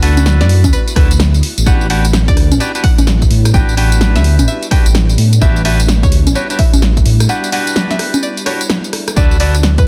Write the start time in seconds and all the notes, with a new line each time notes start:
Already playing: D2 A3 B3 E4 F#4
0.02 D4 F#4 A4 B4 F#5, open hi-hat
0.17 closed hi-hat, tambourine, high conga
0.26 snare, tambourine
0.41 F#2 D5, snare, closed hi-hat, tambourine
0.49 open hi-hat
0.64 D2, kick, closed hi-hat, tambourine, high conga
0.73 B4, tambourine
0.88 closed hi-hat, tambourine
0.96 D2 D4 F#4 A4 B4, kick, cross-stick, open hi-hat
1.11 closed hi-hat, tambourine
1.20 cross-stick, snare, tambourine
1.34 closed hi-hat, tambourine
1.43 G3 D4 E4, open hi-hat
1.58 A1, closed hi-hat, tambourine
1.66 A1 D4 F#4 G4 B4 F#5, kick, tambourine
1.81 tambourine
1.90 D4 F#4 G4 B4 F#5, open hi-hat
2.05 closed hi-hat, tambourine
2.13 snare, tambourine
2.28 D2 D5, kick, closed hi-hat, tambourine
2.37 cross-stick, open hi-hat
2.52 A1, closed hi-hat, tambourine, high conga
2.60 D4 F#4 G4 B4 D5, tambourine
2.75 D4 F#4 G4 B4, closed hi-hat, tambourine
2.84 F#5, kick, open hi-hat
2.98 A1, closed hi-hat, tambourine, high conga
3.07 snare, tambourine
3.22 kick, closed hi-hat, tambourine
3.31 A2, open hi-hat
3.45 cross-stick, closed hi-hat, tambourine
3.54 A1 D4 F#4 G4 B4 G5, kick, tambourine
3.69 tambourine
3.77 D4 F#4 G4 B4 G5, open hi-hat
3.92 closed hi-hat, tambourine
4.01 snare, tambourine
4.16 D2 E5, snare, closed hi-hat, tambourine
4.24 open hi-hat
4.39 A1, closed hi-hat, tambourine, high conga
4.48 E5, tambourine
4.63 closed hi-hat, tambourine
4.71 D4 F#4 G4 B4 G5, kick, cross-stick, open hi-hat
4.86 A1, closed hi-hat, tambourine
4.95 cross-stick, snare, tambourine
5.09 closed hi-hat, tambourine
5.18 A2 E4, open hi-hat
5.33 closed hi-hat, tambourine
5.41 A1 D4 F#4 G4 B4 E5, kick, tambourine
5.56 tambourine
5.65 D4 F#4 G4 B4 E5, open hi-hat
5.80 closed hi-hat, tambourine
5.88 snare, tambourine
6.03 D2 C#5, kick, closed hi-hat, tambourine
6.12 open hi-hat
6.27 A1, closed hi-hat, tambourine, high conga
6.35 D4 F#4 G4 B4 C#5, tambourine
6.50 D4 F#4 G4 B4, closed hi-hat, tambourine
6.59 E5, kick, open hi-hat
6.73 A1, closed hi-hat, tambourine, high conga
6.82 snare, tambourine
6.97 kick, closed hi-hat, tambourine
7.06 A2, open hi-hat
7.20 cross-stick, closed hi-hat, tambourine
7.29 D4 F#4 G4 B4 F#5, tambourine
7.44 closed hi-hat, tambourine
7.52 D4 F#4 G4 B4 F#5, open hi-hat
7.67 closed hi-hat, tambourine
7.76 snare, tambourine
7.91 E5, snare, closed hi-hat, tambourine
7.99 cross-stick, open hi-hat
8.14 closed hi-hat, tambourine, high conga
8.23 D5, tambourine
8.37 closed hi-hat, tambourine
8.46 D4 F#4 G4 B4 C#5, cross-stick, open hi-hat
8.61 closed hi-hat, tambourine
8.70 cross-stick, snare, tambourine
8.84 closed hi-hat, tambourine
8.93 cross-stick, open hi-hat
9.08 cross-stick, closed hi-hat, tambourine
9.16 D2 A3 B3 D4 E4 F#4 A4 B4 D5, kick, tambourine
9.31 tambourine
9.40 D4 F#4 A4 B4 D5, open hi-hat
9.55 closed hi-hat, tambourine
9.63 snare, tambourine
9.78 F#2 B4, kick, closed hi-hat, tambourine